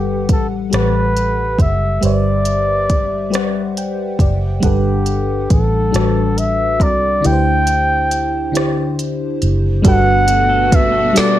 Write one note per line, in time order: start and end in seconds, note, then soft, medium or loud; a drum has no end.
0.00 0.30 G1 medium
0.00 0.60 G3 medium
0.00 0.30 G4 medium
0.00 0.60 G4 medium
0.00 0.61 A4 medium
0.00 0.65 B4 medium
0.00 0.62 F#5 medium
0.29 0.69 A1 medium
0.29 0.48 A4 medium
0.29 kick medium
0.29 closed hi-hat soft
0.70 1.56 A1 medium
0.70 1.90 G3 soft
0.70 1.91 G4 soft
0.70 1.92 A4 soft
0.70 1.92 B4 soft
0.70 closed hi-hat medium
0.74 1.63 B4 medium
0.74 1.93 F#5 medium
0.74 cross-stick medium
1.17 closed hi-hat soft
1.59 1.99 F#1 medium
1.59 2.04 E5 medium
1.59 kick medium
1.59 closed hi-hat soft
2.01 4.16 G1 medium
2.01 3.21 G3 medium
2.01 3.21 G4 medium
2.01 3.22 B4 medium
2.01 3.23 C5 medium
2.01 3.23 D5 medium
2.01 closed hi-hat medium
2.05 3.74 D5 medium
2.05 3.24 E5 medium
2.45 closed hi-hat soft
2.90 kick medium
2.90 closed hi-hat soft
3.30 4.51 G3 medium
3.30 4.52 G4 medium
3.30 4.52 B4 medium
3.30 4.52 C5 medium
3.30 closed hi-hat medium
3.35 4.20 D5 medium
3.35 4.54 F#5 medium
3.35 cross-stick medium
3.77 4.18 G5 medium
3.77 closed hi-hat soft
4.19 4.59 F#1 medium
4.19 4.61 D5 medium
4.19 kick medium
4.19 closed hi-hat soft
4.60 5.46 G1 medium
4.60 5.81 G3 medium
4.60 5.82 D4 medium
4.60 5.83 F#5 medium
4.60 kick medium
4.60 closed hi-hat medium
4.64 5.47 G4 medium
4.64 5.83 A4 medium
4.64 5.84 B4 medium
5.06 closed hi-hat soft
5.50 5.90 A1 medium
5.50 6.40 A4 medium
5.50 kick medium
5.50 closed hi-hat soft
5.91 6.81 A1 medium
5.91 7.12 G3 soft
5.91 7.12 D4 soft
5.91 7.13 F#4 soft
5.91 7.14 A4 medium
5.91 closed hi-hat medium
5.96 7.14 B4 medium
5.96 cross-stick medium
6.38 6.84 E5 medium
6.38 closed hi-hat soft
6.80 7.20 C2 medium
6.80 7.28 D5 medium
6.80 kick medium
6.80 closed hi-hat soft
7.21 8.42 D3 medium
7.21 8.43 D4 medium
7.21 8.43 E4 medium
7.21 8.44 G4 medium
7.21 closed hi-hat medium
7.26 9.38 D2 medium
7.26 7.32 B4 medium
7.26 8.99 G5 medium
7.32 8.48 C5 medium
7.67 closed hi-hat soft
8.11 closed hi-hat soft
8.52 9.73 D3 medium
8.52 9.73 D4 medium
8.52 9.74 E4 medium
8.52 9.75 G4 medium
8.52 closed hi-hat medium
8.57 9.75 C5 medium
8.57 cross-stick medium
8.99 closed hi-hat soft
9.42 9.82 F#1 medium
9.42 closed hi-hat soft
9.82 11.12 G1 medium
9.82 11.39 B2 medium
9.82 11.03 G3 medium
9.82 11.14 G3 medium
9.82 11.39 A3 medium
9.82 11.04 D4 medium
9.82 11.04 F#4 medium
9.82 11.39 F#4 medium
9.82 10.48 A4 medium
9.82 11.05 A4 medium
9.82 kick loud
9.82 closed hi-hat medium
9.88 11.06 B4 medium
9.88 10.77 F#5 loud
10.06 10.71 B3 medium
10.27 11.39 F#4 medium
10.27 closed hi-hat medium
10.49 10.91 A4 medium
10.71 11.36 B3 medium
10.71 kick loud
10.71 closed hi-hat medium
10.75 11.20 E5 loud
10.92 11.14 A4 medium
11.13 11.39 G3 medium
11.13 11.39 D4 medium
11.13 11.39 F#4 medium
11.13 11.39 A4 medium
11.13 closed hi-hat medium
11.17 11.39 B4 medium
11.17 11.39 D5 medium
11.17 muted fingered electric bass stroke soft
11.17 snare loud